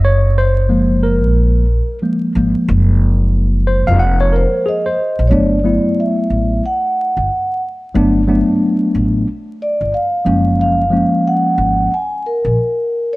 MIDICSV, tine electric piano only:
0, 0, Header, 1, 2, 480
1, 0, Start_track
1, 0, Tempo, 659341
1, 29, Time_signature, 4, 2, 24, 8
1, 9583, End_track
2, 0, Start_track
2, 0, Title_t, "Tine electric piano"
2, 0, Program_c, 0, 4
2, 34, Note_on_c, 0, 73, 105
2, 276, Note_on_c, 0, 72, 97
2, 279, Note_off_c, 0, 73, 0
2, 501, Note_on_c, 0, 53, 60
2, 505, Note_on_c, 0, 56, 55
2, 508, Note_on_c, 0, 58, 72
2, 751, Note_on_c, 0, 70, 81
2, 767, Note_off_c, 0, 72, 0
2, 1196, Note_off_c, 0, 53, 0
2, 1198, Note_off_c, 0, 56, 0
2, 1199, Note_off_c, 0, 58, 0
2, 1441, Note_off_c, 0, 70, 0
2, 1469, Note_on_c, 0, 53, 47
2, 1474, Note_on_c, 0, 56, 46
2, 1478, Note_on_c, 0, 58, 56
2, 1685, Note_off_c, 0, 53, 0
2, 1687, Note_off_c, 0, 56, 0
2, 1690, Note_off_c, 0, 58, 0
2, 1711, Note_on_c, 0, 53, 52
2, 1719, Note_on_c, 0, 56, 51
2, 1721, Note_on_c, 0, 58, 61
2, 2673, Note_on_c, 0, 72, 100
2, 2818, Note_on_c, 0, 77, 105
2, 2825, Note_off_c, 0, 72, 0
2, 2907, Note_on_c, 0, 78, 103
2, 2911, Note_off_c, 0, 77, 0
2, 3047, Note_off_c, 0, 78, 0
2, 3061, Note_on_c, 0, 73, 99
2, 3149, Note_on_c, 0, 70, 90
2, 3153, Note_off_c, 0, 73, 0
2, 3391, Note_on_c, 0, 68, 88
2, 3396, Note_off_c, 0, 70, 0
2, 3538, Note_on_c, 0, 72, 85
2, 3544, Note_off_c, 0, 68, 0
2, 3601, Note_off_c, 0, 53, 0
2, 3605, Note_off_c, 0, 56, 0
2, 3606, Note_off_c, 0, 58, 0
2, 3846, Note_off_c, 0, 72, 0
2, 3861, Note_on_c, 0, 54, 71
2, 3863, Note_on_c, 0, 57, 66
2, 3870, Note_on_c, 0, 59, 65
2, 3876, Note_on_c, 0, 62, 84
2, 4059, Note_off_c, 0, 54, 0
2, 4060, Note_off_c, 0, 57, 0
2, 4063, Note_off_c, 0, 59, 0
2, 4066, Note_off_c, 0, 62, 0
2, 4105, Note_on_c, 0, 54, 67
2, 4107, Note_on_c, 0, 57, 64
2, 4112, Note_on_c, 0, 59, 64
2, 4118, Note_on_c, 0, 64, 76
2, 4823, Note_off_c, 0, 54, 0
2, 4824, Note_off_c, 0, 57, 0
2, 4826, Note_off_c, 0, 59, 0
2, 4829, Note_off_c, 0, 64, 0
2, 5782, Note_on_c, 0, 54, 87
2, 5787, Note_on_c, 0, 57, 77
2, 5793, Note_on_c, 0, 59, 83
2, 5800, Note_on_c, 0, 62, 99
2, 5979, Note_off_c, 0, 54, 0
2, 5982, Note_off_c, 0, 57, 0
2, 5985, Note_off_c, 0, 59, 0
2, 5988, Note_off_c, 0, 62, 0
2, 6024, Note_on_c, 0, 54, 84
2, 6027, Note_on_c, 0, 57, 77
2, 6033, Note_on_c, 0, 59, 79
2, 6037, Note_on_c, 0, 62, 88
2, 6742, Note_off_c, 0, 54, 0
2, 6744, Note_off_c, 0, 57, 0
2, 6747, Note_off_c, 0, 59, 0
2, 6749, Note_off_c, 0, 62, 0
2, 7462, Note_on_c, 0, 53, 67
2, 7467, Note_on_c, 0, 56, 62
2, 7470, Note_on_c, 0, 58, 62
2, 7477, Note_on_c, 0, 61, 83
2, 7873, Note_off_c, 0, 53, 0
2, 7876, Note_off_c, 0, 56, 0
2, 7877, Note_off_c, 0, 58, 0
2, 7881, Note_off_c, 0, 61, 0
2, 7938, Note_on_c, 0, 53, 74
2, 7943, Note_on_c, 0, 56, 66
2, 7952, Note_on_c, 0, 58, 64
2, 7957, Note_on_c, 0, 61, 78
2, 8659, Note_off_c, 0, 53, 0
2, 8662, Note_off_c, 0, 56, 0
2, 8666, Note_off_c, 0, 58, 0
2, 8669, Note_off_c, 0, 61, 0
2, 9583, End_track
0, 0, End_of_file